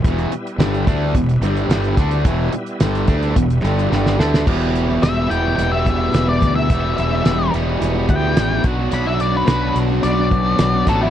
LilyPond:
<<
  \new Staff \with { instrumentName = "Lead electric guitar" } { \time 4/4 \key e \minor \tempo 4 = 108 r1 | r1 | r4 e''8 g''8 g''16 e''4 d''8 e''16~ | e''8 e''4 r4 g''4 r8 |
b''16 e''16 d''16 b'16 b'8 r8 d''4. a'16 e'16 | }
  \new Staff \with { instrumentName = "Steel-string acoustic guitar" } { \time 4/4 \key e \minor r1 | r1 | <e, b, e g b e'>8. <e g b e'>16 <e, b, e g b e'>8. <e g b e'>8 <e g b e'>16 <e g b e'>8 <e, b, e g b e'>16 <e g b e'>16 <e g b e'>16 <e g b e'>16 | <e, b, e g b e'>16 <e g b e'>8 <e g b e'>16 <e, b, e g b e'>4~ <e, b, e g b e'>16 <e g b e'>16 <e g b e'>8 <e, b, e g b e'>16 <e g b e'>16 <fis b d' fis'>16 <b d' fis'>16 |
<b, fis b d' fis'>16 <b d' fis'>8 <b d' fis'>16 <b, fis b d' fis'>8. <b d' fis'>8 <b d' fis'>16 <fis b fis'>8 <b, fis b d' fis'>16 <b d' fis'>16 <fis b d' fis'>16 <b d' fis'>16 | }
  \new Staff \with { instrumentName = "Tonewheel organ" } { \time 4/4 \key e \minor <g b e'>1 | <g b e'>1 | r1 | r1 |
r1 | }
  \new Staff \with { instrumentName = "Distorted electric guitar" } { \clef bass \time 4/4 \key e \minor <e, b, e>8 r8 <g, d g>8 <d a d'>8 <e, b,>8 <g, d g>8 <g, d g>8 <d a d'>8 | <e, b, e>8 r8 <g, d g>8 <d a d'>8 <e, b,>8 <g, d g>8 <g, d g>8 <d a d'>8 | <e, b, e g b g'>4. <e, b, e g b g'>2~ <e, b, e g b g'>8 | <e, b, e g b g'>4. <e, b, e g b g'>2 <b, fis b d' fis'>8~ |
<b, fis b d' fis'>4 <b, fis b d' fis'>2~ <b, fis b d' fis'>8 <b, fis b d' fis'>8 | }
  \new Staff \with { instrumentName = "Fingered electric bass" } { \clef bass \time 4/4 \key e \minor e,,8 r8 g,,8 d,8 e,,8 g,,8 g,,8 d,8 | e,,8 r8 g,,8 d,8 e,,8 g,,8 g,,8 d,8 | e,,4 e,,8 e,,8 e,,4 e,,8 d,8 | e,,8 e,,8 e,,8 e,,8 e,,8 d,8 a,,8 b,,8 |
b,,4 b,,8 b,,8 b,,4 b,,8 a,,8 | }
  \new DrumStaff \with { instrumentName = "Drums" } \drummode { \time 4/4 <hh bd>16 hh16 hh16 hh16 <hh sn>16 hh16 <hh bd>8 <hh bd>16 hh16 hh16 hh16 <hh sn>16 hh16 <hh bd sn>16 hh16 | <hh bd>8 hh16 hh16 <hh sn>16 hh16 <hh bd>16 hh16 <hh bd>16 hh16 hh16 hh16 sn16 sn16 sn16 sn16 | <cymc bd>8 hh8 <hh sn>8 hh8 hh8 <hh bd>8 <hh sn>8 <hh bd>8 | <hh bd>8 hh8 <hh sn>8 hh8 hh8 <hh bd>8 <hh sn>8 <hh bd>8 |
hh8 hh8 <hh sn>8 hh8 hh8 <hh bd>8 <hh sn>8 <hh bd sn>8 | }
>>